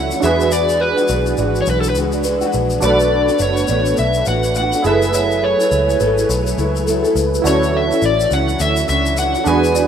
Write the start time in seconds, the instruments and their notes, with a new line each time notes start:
Already playing: picked electric bass C#2, nylon-string guitar D3 F#3 C#4, string machine E3 A3 E4 F#4, synth keys E4 F#4 A4 E5, electric slide guitar F#5
0.11 nylon-string guitar F#3 C#4 E4, shaker
0.20 picked electric bass E2, nylon-string guitar E3 G#3, string machine E3 D4 G#4, synth keys D4 F#4 G#4, electric slide guitar E5, shaker
0.24 nylon-string guitar D4 F#4, synth keys B4
0.41 shaker
0.52 kalimba D5, electric slide guitar D5, shaker
0.69 shaker
0.80 kalimba B4, electric slide guitar B4
0.97 nylon-string guitar G#3 D4 F#4, shaker
1.08 picked electric bass B1, kalimba D5, shaker
1.26 shaker
1.37 picked electric bass G#1, nylon-string guitar E3 G#3 D4 F#4, kalimba D5, shaker
1.55 shaker
1.62 electric slide guitar C#5
1.66 picked electric bass B1, kalimba B4, shaker
1.70 electric slide guitar B4
1.81 electric slide guitar A4, shaker
1.90 electric slide guitar B4
1.94 picked electric bass C#2, nylon-string guitar E3 G#3 D4 F#4, shaker
2.12 kalimba D5, shaker
2.24 nylon-string guitar E3 G#3 D4 F#4, kalimba B4, shaker
2.41 nylon-string guitar G#3 D4 F#4, shaker
2.53 picked electric bass A#1, kalimba B4, shaker
2.70 shaker
2.80 picked electric bass B1, nylon-string guitar B2 A3 D4 F#4, string machine A3 B3, synth keys D4 F#4 A4, kalimba D5, electric slide guitar D5, shaker
2.85 synth keys B4
3.00 shaker
3.27 nylon-string guitar A3 D4 F#4, kalimba B4, shaker
3.39 picked electric bass F#1, electric slide guitar C#5, shaker
3.57 shaker
3.68 picked electric bass A1, nylon-string guitar B2 A3 D4, kalimba D5, shaker
3.72 nylon-string guitar F#4
3.86 shaker
3.97 picked electric bass B1, electric slide guitar E5, shaker
4.14 shaker
4.26 picked electric bass A1, nylon-string guitar B2 A3 D4 F#4, kalimba B4, electric slide guitar F#5, shaker
4.44 shaker
4.55 nylon-string guitar B2 A3 D4 F#4, electric slide guitar F#5, shaker
4.72 nylon-string guitar A3 D4 F#4, shaker
4.83 picked electric bass F#1, nylon-string guitar F#3 B3 E4 A4, string machine F#3 A3 E4 B4 G#5, synth keys E4 G#4 A4, electric slide guitar E5, shaker
4.88 synth keys B4
5.02 shaker
5.14 kalimba C#5, electric slide guitar E5, shaker
5.31 shaker
5.42 kalimba B4, electric slide guitar C#5
5.59 nylon-string guitar B3 E4 A4, shaker
5.71 picked electric bass C#2, kalimba C#5, shaker
5.90 shaker
5.99 picked electric bass G#1, nylon-string guitar F#3 B3 E4 A4, kalimba B4, shaker
6.18 shaker
6.29 picked electric bass B1, kalimba C#5, shaker
6.47 shaker
6.56 picked electric bass C#2, nylon-string guitar F#3 B3 E4 A4, shaker
6.75 kalimba B4, shaker
6.85 nylon-string guitar F#3 B3 E4 A4, kalimba A4, shaker
7.02 nylon-string guitar B3 E4 A4, shaker
7.15 picked electric bass C#2, kalimba B4, shaker
7.34 shaker
7.42 picked electric bass D2, nylon-string guitar D3 F#3 C#4, string machine E3 C#4 F#4, synth keys E4 F#4 A4, kalimba D5, shaker
7.46 nylon-string guitar E4, synth keys C#5, electric slide guitar C#5
7.63 shaker
7.77 electric slide guitar E5
7.89 nylon-string guitar F#3 C#4 E4, kalimba C#5, shaker
8.02 picked electric bass A1, electric slide guitar D5, shaker
8.20 shaker
8.30 picked electric bass C#2, nylon-string guitar D3 F#3 C#4 E4, kalimba D5, electric slide guitar F#5, shaker
8.49 shaker
8.60 picked electric bass D2, electric slide guitar E5, shaker
8.76 shaker
8.87 picked electric bass C#2, nylon-string guitar D3 F#3 C#4 E4, kalimba C#5, electric slide guitar E5, shaker
9.06 shaker
9.16 nylon-string guitar D3 F#3 C#4 E4, electric slide guitar F#5, shaker
9.33 nylon-string guitar F#3 C#4 E4, shaker
9.44 picked electric bass E2, nylon-string guitar E3 G#3 D4, string machine E3 D4 G#4, synth keys D4 F#4 G#4, electric slide guitar G#5, shaker
9.48 nylon-string guitar F#4, synth keys B4
9.64 shaker
9.75 kalimba D5, shaker